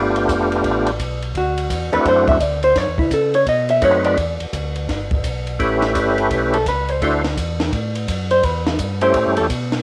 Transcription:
0.00 0.27 G1 medium
0.00 0.91 A3 medium
0.00 0.91 B3 medium
0.00 0.92 D4 medium
0.00 0.91 F4 medium
0.00 0.92 G4 medium
0.00 0.14 B4 medium
0.16 ride soft
0.28 0.63 F1 medium
0.28 kick soft
0.28 hi-hat pedal medium
0.28 ride medium
0.52 ride soft
0.64 0.98 A1 medium
0.64 kick soft
0.64 ride medium
0.87 ride medium
0.99 1.34 B1 medium
0.99 kick soft
0.99 hi-hat pedal medium
0.99 ride medium
1.22 ride soft
1.34 1.69 D2 medium
1.34 1.90 F#4 medium
1.34 kick soft
1.34 ride medium
1.58 ride medium
1.70 1.91 E2 medium
1.70 kick soft
1.70 hi-hat pedal medium
1.70 ride medium
1.92 1.99 E2 soft
1.92 2.38 A3 medium
1.92 2.38 C4 medium
1.92 2.38 D4 medium
1.92 2.38 E4 medium
1.92 2.38 F#4 medium
1.92 2.06 B4 medium
1.92 ride soft
2.05 2.40 F#2 medium
2.05 2.28 C5 medium
2.05 kick soft
2.05 ride medium
2.28 2.43 E5 loud
2.28 kick medium
2.28 ride medium
2.40 2.75 D2 medium
2.40 2.63 D5 medium
2.40 kick soft
2.40 hi-hat pedal medium
2.40 ride medium
2.63 2.78 C5 medium
2.63 ride soft
2.76 2.87 F#2 medium
2.76 2.99 C#5 medium
2.76 kick soft
2.76 snare soft
2.76 ride medium
2.88 3.00 E2 medium
2.98 3.11 C#2 medium
2.98 3.11 E4 soft
2.98 kick medium
2.98 ride soft
3.11 3.46 C#3 medium
3.11 3.35 A4 medium
3.11 kick soft
3.11 hi-hat pedal medium
3.11 ride medium
3.34 3.47 C#5 medium
3.34 ride soft
3.46 3.81 B2 medium
3.46 3.70 D#5 medium
3.46 kick soft
3.46 ride medium
3.69 3.83 E5 medium
3.69 ride soft
3.82 4.16 F#2 medium
3.82 4.17 A3 medium
3.82 4.17 C4 medium
3.82 4.18 D#4 medium
3.82 4.18 F#4 medium
3.82 4.18 B4 medium
3.82 4.05 C#5 medium
3.82 kick soft
3.82 hi-hat pedal medium
3.82 ride medium
4.04 4.85 D5 medium
4.04 ride soft
4.17 4.38 E2 medium
4.17 kick soft
4.17 ride medium
4.40 4.46 E2 soft
4.40 ride soft
4.53 4.87 D2 medium
4.53 kick soft
4.53 hi-hat pedal medium
4.53 ride medium
4.75 ride soft
4.88 5.23 G1 medium
4.88 kick soft
4.88 snare soft
4.88 ride medium
5.11 kick medium
5.11 ride medium
5.24 5.58 B1 medium
5.24 kick soft
5.24 hi-hat pedal medium
5.24 ride medium
5.47 ride soft
5.59 5.94 A1 medium
5.59 6.58 A3 medium
5.59 6.58 C#4 medium
5.59 6.58 E4 medium
5.59 6.58 G4 medium
5.59 6.59 B4 medium
5.59 kick soft
5.59 ride medium
5.82 snare soft
5.82 ride medium
5.95 6.29 G1 medium
5.95 kick soft
5.95 hi-hat pedal medium
5.95 ride medium
6.18 ride soft
6.31 6.65 B1 medium
6.31 kick soft
6.31 ride medium
6.54 6.66 A4 medium
6.54 ride medium
6.66 7.00 C#2 medium
6.66 6.89 B4 medium
6.66 kick soft
6.66 hi-hat pedal medium
6.66 ride medium
6.89 7.73 C5 medium
6.89 ride soft
7.02 7.36 D2 medium
7.02 7.22 A3 medium
7.02 7.22 D4 medium
7.02 7.22 E4 medium
7.02 7.22 F#4 medium
7.02 7.23 C5 medium
7.02 kick soft
7.02 ride medium
7.24 snare soft
7.24 ride soft
7.37 7.71 E2 medium
7.37 kick soft
7.37 hi-hat pedal medium
7.37 ride medium
7.60 snare medium
7.60 ride soft
7.73 8.07 A2 medium
7.73 kick soft
7.73 ride medium
7.95 ride medium
8.08 8.42 F#2 medium
8.08 kick soft
8.08 hi-hat pedal medium
8.08 ride medium
8.31 8.45 C5 loud
8.31 ride soft
8.43 8.78 E2 medium
8.43 9.02 B4 medium
8.43 kick soft
8.43 ride medium
8.67 snare medium
8.67 ride medium
8.79 9.13 G2 medium
8.79 kick soft
8.79 hi-hat pedal medium
8.79 ride medium
9.01 9.47 A3 medium
9.01 9.47 C#4 medium
9.01 9.47 E4 medium
9.01 9.48 G4 medium
9.01 9.35 C5 medium
9.01 ride medium
9.14 9.26 A2 medium
9.14 kick soft
9.14 ride medium
9.27 9.38 G2 medium
9.37 9.49 E2 medium
9.37 9.45 A4 medium
9.37 ride medium
9.50 9.82 B2 medium
9.50 kick soft
9.50 hi-hat pedal soft
9.50 ride medium
9.72 snare soft
9.72 ride medium

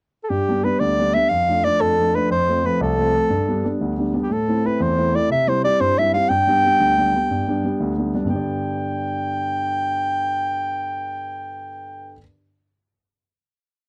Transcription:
0.24 0.31 A4 medium
0.30 0.63 G2 soft
0.30 0.66 G4 medium
0.49 0.62 G3 soft
0.49 0.63 B3 soft
0.49 0.63 D4 soft
0.64 0.92 G3 soft
0.64 0.92 B3 soft
0.64 0.92 D4 soft
0.64 0.81 B4 medium
0.79 1.14 D2 medium
0.79 1.16 D5 medium
0.99 1.13 G3 soft
0.99 1.13 B3 soft
0.99 1.14 D4 soft
1.14 1.27 G3 soft
1.14 1.27 B3 soft
1.14 1.28 D4 soft
1.14 1.31 E5 medium
1.29 1.64 F2 medium
1.29 1.66 F5 medium
1.48 1.63 F3 soft
1.48 1.64 A3 soft
1.48 1.64 D4 soft
1.64 1.92 F3 soft
1.64 1.92 A3 soft
1.64 1.93 D4 soft
1.64 1.83 D5 medium
1.81 2.14 F2 medium
1.81 2.17 A4 medium
2.00 2.14 F3 soft
2.00 2.14 A3 soft
2.00 2.14 D4 soft
2.15 2.28 F3 soft
2.15 2.28 A3 soft
2.15 2.28 D4 soft
2.15 2.31 B4 medium
2.30 2.64 F2 medium
2.30 2.67 C5 medium
2.49 2.62 F3 soft
2.49 2.63 A3 soft
2.49 2.63 C4 soft
2.64 2.92 F3 soft
2.64 2.92 A3 soft
2.64 2.92 C4 soft
2.64 2.81 B4 medium
2.81 3.14 C2 medium
2.81 3.77 A4 medium
2.98 3.13 F3 soft
2.98 3.13 A3 soft
2.98 3.14 C4 soft
3.14 3.27 F3 soft
3.14 3.27 A3 soft
3.14 3.27 C4 soft
3.30 3.63 G2 medium
3.49 3.63 G3 soft
3.49 3.63 B3 soft
3.49 3.63 D4 soft
3.64 3.92 G3 soft
3.64 3.92 B3 soft
3.64 3.92 D4 soft
3.81 4.14 D2 medium
3.98 4.12 G3 soft
3.98 4.12 B3 soft
3.98 4.13 D4 soft
4.14 4.27 G3 soft
4.14 4.27 B3 soft
4.14 4.27 D4 soft
4.23 4.34 G4 medium
4.30 4.63 A2 medium
4.30 4.68 A4 medium
4.48 4.63 A3 soft
4.48 4.63 C4 soft
4.48 4.63 E4 soft
4.64 4.91 A3 soft
4.64 4.92 C4 soft
4.64 4.92 E4 medium
4.64 4.84 B4 medium
4.80 5.13 E2 medium
4.80 5.17 C5 medium
4.97 5.12 A3 soft
4.97 5.13 C4 soft
4.97 5.13 E4 medium
5.14 5.27 A3 soft
5.14 5.27 C4 soft
5.14 5.27 E4 soft
5.14 5.31 D5 medium
5.30 5.63 C3 medium
5.30 5.50 E5 medium
5.47 5.63 G3 soft
5.47 5.63 C4 soft
5.47 5.63 E4 soft
5.47 5.64 C5 medium
5.64 5.91 G3 soft
5.64 5.92 C4 soft
5.64 5.92 E4 soft
5.64 5.82 D5 medium
5.80 6.13 G2 medium
5.80 6.00 C5 medium
5.99 6.13 G3 soft
5.99 6.13 C4 soft
5.99 6.14 E4 soft
5.99 6.13 E5 loud
6.14 6.27 G3 soft
6.14 6.27 C4 soft
6.14 6.27 E4 soft
6.14 6.31 F5 medium
6.29 6.63 G2 medium
6.29 7.98 G5 loud
6.47 6.62 G3 soft
6.47 6.63 B3 soft
6.47 6.63 D4 soft
6.64 6.91 G3 soft
6.64 6.92 B3 soft
6.64 6.92 D4 soft
6.80 7.13 D2 medium
6.98 7.13 G3 soft
6.98 7.13 B3 soft
6.98 7.14 D4 soft
7.14 7.41 G3 soft
7.14 7.42 B3 soft
7.14 7.42 D4 soft
7.31 7.63 G2 soft
7.48 7.63 G3 soft
7.48 7.63 B3 soft
7.48 7.64 D4 soft
7.64 7.91 G3 soft
7.64 7.92 B3 soft
7.64 7.92 D4 soft
7.80 8.13 D2 medium
7.98 8.13 G3 soft
7.98 8.12 B3 soft
7.98 8.13 D4 soft
8.14 8.26 G3 soft
8.14 8.26 B3 soft
8.14 8.27 D4 soft
8.24 12.11 G2 soft
8.24 12.14 D3 soft
8.29 12.16 B3 soft
8.29 12.18 D4 soft
8.29 12.20 G4 soft
8.29 12.17 G5 medium
8.35 12.22 D5 soft

